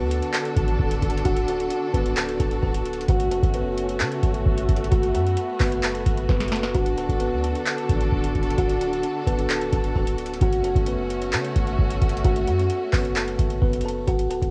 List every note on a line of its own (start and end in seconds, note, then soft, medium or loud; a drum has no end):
0.00 0.21 D2 loud
0.00 3.05 D3 medium
0.00 0.31 B3 medium
0.00 3.05 D4 medium
0.00 10.37 F#4 medium
0.00 3.05 A4 medium
0.00 0.31 B4 medium
0.11 closed hi-hat medium
0.22 closed hi-hat medium
0.34 1.21 A4 medium
0.34 1.22 A5 medium
0.34 clap loud
0.34 closed hi-hat medium
0.45 closed hi-hat medium
0.56 0.78 A1 loud
0.56 kick loud
0.56 closed hi-hat medium
0.68 closed hi-hat soft
0.79 1.01 D1 loud
0.79 kick loud
0.91 closed hi-hat medium
1.02 1.24 D1 loud
1.02 kick medium
1.02 closed hi-hat medium
1.10 closed hi-hat medium
1.18 closed hi-hat medium
1.25 1.69 D1 loud
1.25 1.45 F#4 loud
1.25 1.45 F#5 medium
1.25 kick loud
1.25 closed hi-hat medium
1.37 closed hi-hat medium
1.48 1.91 F#4 medium
1.48 1.92 F#5 medium
1.48 closed hi-hat medium
1.60 closed hi-hat medium
1.70 closed hi-hat medium
1.94 2.38 D1 loud
1.94 2.14 B3 medium
1.94 2.14 B4 medium
1.94 kick loud
1.94 closed hi-hat medium
2.06 closed hi-hat medium
2.17 2.37 A4 medium
2.17 2.37 A5 medium
2.17 clap loud
2.17 closed hi-hat medium
2.29 closed hi-hat medium
2.40 2.62 D1 loud
2.40 2.60 A4 medium
2.40 2.60 A5 medium
2.40 kick loud
2.40 closed hi-hat medium
2.51 closed hi-hat medium
2.62 3.07 D1 loud
2.62 2.82 A4 medium
2.62 2.83 A5 medium
2.62 kick loud
2.74 closed hi-hat medium
2.85 closed hi-hat medium
2.93 closed hi-hat medium
3.01 closed hi-hat medium
3.08 3.41 F#1 loud
3.08 6.71 A3 medium
3.08 4.90 C#4 medium
3.08 3.29 F#4 loud
3.08 3.29 F#5 medium
3.08 kick loud
3.08 closed hi-hat medium
3.20 closed hi-hat medium
3.31 3.51 A4 medium
3.31 3.51 A5 medium
3.31 closed hi-hat medium
3.43 4.02 F#1 loud
3.43 kick medium
3.43 closed hi-hat medium
3.54 3.98 B3 medium
3.54 3.97 B4 medium
3.54 closed hi-hat medium
3.78 closed hi-hat medium
3.89 closed hi-hat medium
4.00 4.22 C#3 loud
4.00 4.88 A4 medium
4.00 4.88 A5 medium
4.00 clap loud
4.00 closed hi-hat medium
4.12 closed hi-hat medium
4.23 4.45 F#1 loud
4.23 kick loud
4.23 closed hi-hat medium
4.34 closed hi-hat medium
4.46 4.68 F#1 loud
4.46 kick loud
4.58 closed hi-hat medium
4.69 4.91 F#1 loud
4.69 kick medium
4.69 closed hi-hat medium
4.76 closed hi-hat medium
4.84 closed hi-hat medium
4.91 5.16 F#1 loud
4.91 6.73 B3 medium
4.91 5.11 F#4 loud
4.91 5.12 F#5 medium
4.91 kick loud
4.91 closed hi-hat medium
5.03 closed hi-hat medium
5.14 5.36 F#2 loud
5.14 5.57 F#4 medium
5.14 5.58 F#5 medium
5.14 closed hi-hat medium
5.27 closed hi-hat medium
5.37 closed hi-hat medium
5.60 6.04 F#1 loud
5.60 5.80 B3 medium
5.60 5.80 B4 medium
5.60 kick medium
5.60 clap medium
5.60 open hi-hat medium
5.72 closed hi-hat medium
5.83 6.26 A4 medium
5.83 6.27 A5 medium
5.83 clap loud
5.83 closed hi-hat medium
5.95 closed hi-hat medium
6.06 6.28 F#1 loud
6.06 kick loud
6.06 closed hi-hat medium
6.17 closed hi-hat medium
6.29 6.73 F#1 loud
6.29 6.49 B3 medium
6.29 6.49 B4 medium
6.29 kick loud
6.29 snare medium
6.40 snare medium
6.40 closed hi-hat medium
6.48 snare loud
6.48 closed hi-hat medium
6.52 6.72 A4 medium
6.52 6.72 A5 medium
6.52 closed hi-hat medium
6.63 snare loud
6.75 7.08 D1 loud
6.75 10.37 D3 medium
6.75 10.37 D4 medium
6.75 6.95 F#4 loud
6.75 10.37 A4 medium
6.75 6.95 F#5 medium
6.75 kick loud
6.75 closed hi-hat medium
6.86 closed hi-hat medium
6.97 7.17 A4 medium
6.97 7.18 A5 medium
6.97 closed hi-hat medium
7.09 7.33 D1 loud
7.09 kick medium
7.09 closed hi-hat medium
7.20 7.64 B3 medium
7.20 7.64 B4 medium
7.20 closed hi-hat medium
7.32 7.54 D2 loud
7.44 closed hi-hat medium
7.55 closed hi-hat medium
7.66 8.54 A4 medium
7.66 8.54 A5 medium
7.66 clap loud
7.66 closed hi-hat medium
7.78 closed hi-hat medium
7.89 8.11 A1 loud
7.89 kick loud
7.89 closed hi-hat medium
8.01 closed hi-hat medium
8.12 8.34 D1 loud
8.12 kick loud
8.24 closed hi-hat medium
8.35 8.57 D1 loud
8.35 kick loud
8.35 closed hi-hat medium
8.43 closed hi-hat medium
8.50 closed hi-hat medium
8.58 9.02 D1 loud
8.58 8.78 F#4 loud
8.58 8.78 F#5 medium
8.58 kick loud
8.58 closed hi-hat medium
8.69 closed hi-hat medium
8.81 9.24 F#4 medium
8.81 9.25 F#5 medium
8.81 closed hi-hat medium
8.93 closed hi-hat medium
9.03 closed hi-hat medium
9.27 9.71 D1 loud
9.27 9.47 B3 medium
9.27 9.47 B4 medium
9.27 kick loud
9.27 closed hi-hat medium
9.39 closed hi-hat medium
9.50 9.70 A4 medium
9.50 9.70 A5 medium
9.50 clap loud
9.50 closed hi-hat medium
9.61 closed hi-hat medium
9.73 9.94 D1 loud
9.73 9.93 A4 medium
9.73 9.93 A5 medium
9.73 kick loud
9.73 closed hi-hat medium
9.84 closed hi-hat medium
9.95 10.39 D1 loud
9.95 10.15 A4 medium
9.95 10.16 A5 medium
9.95 kick loud
10.07 closed hi-hat medium
10.18 closed hi-hat medium
10.26 closed hi-hat medium
10.34 closed hi-hat medium
10.41 10.74 F#1 loud
10.41 14.04 A3 medium
10.41 14.04 C#4 medium
10.41 14.04 F#4 medium
10.41 10.61 F#4 loud
10.41 10.62 F#5 medium
10.41 kick loud
10.41 closed hi-hat medium
10.53 closed hi-hat medium
10.64 10.84 A4 medium
10.64 10.84 A5 medium
10.64 closed hi-hat medium
10.76 11.34 F#1 loud
10.76 kick medium
10.76 closed hi-hat medium
10.86 11.31 B3 medium
10.86 11.30 B4 medium
10.86 closed hi-hat medium
11.10 closed hi-hat medium
11.22 closed hi-hat medium
11.33 11.54 C#3 loud
11.33 12.20 A4 medium
11.33 12.21 A5 medium
11.33 clap loud
11.33 closed hi-hat medium
11.44 closed hi-hat medium
11.56 11.78 F#1 loud
11.56 kick loud
11.56 closed hi-hat medium
11.67 closed hi-hat medium
11.79 12.01 F#1 loud
11.79 kick loud
11.90 closed hi-hat medium
12.01 12.23 F#1 loud
12.01 kick medium
12.01 closed hi-hat medium
12.09 closed hi-hat medium
12.17 closed hi-hat medium
12.24 12.49 F#1 loud
12.24 12.44 F#4 loud
12.24 12.45 F#5 medium
12.24 kick loud
12.24 closed hi-hat medium
12.36 closed hi-hat medium
12.47 12.69 F#2 loud
12.47 12.90 F#4 medium
12.47 12.91 F#5 medium
12.47 closed hi-hat medium
12.59 closed hi-hat medium
12.70 closed hi-hat medium
12.92 13.37 F#1 loud
12.92 13.13 B3 medium
12.92 13.13 B4 medium
12.92 kick loud
12.92 clap medium
12.92 open hi-hat medium
13.05 closed hi-hat medium
13.16 13.59 A4 medium
13.16 13.60 A5 medium
13.16 clap loud
13.16 closed hi-hat medium
13.28 closed hi-hat medium
13.39 13.61 F#1 loud
13.39 kick loud
13.39 closed hi-hat medium
13.50 closed hi-hat medium
13.62 14.06 F#1 loud
13.62 13.82 B3 medium
13.62 13.82 B4 medium
13.62 kick loud
13.73 closed hi-hat medium
13.81 14.05 A4 medium
13.81 closed hi-hat medium
13.86 14.05 A5 medium
13.86 closed hi-hat medium
14.07 14.41 D1 loud
14.07 14.27 F#4 loud
14.07 14.28 F#5 medium
14.07 kick loud
14.07 closed hi-hat medium
14.19 closed hi-hat medium
14.30 14.50 A4 medium
14.30 14.51 A5 medium
14.30 closed hi-hat medium
14.42 14.51 D1 loud
14.42 kick medium
14.42 closed hi-hat medium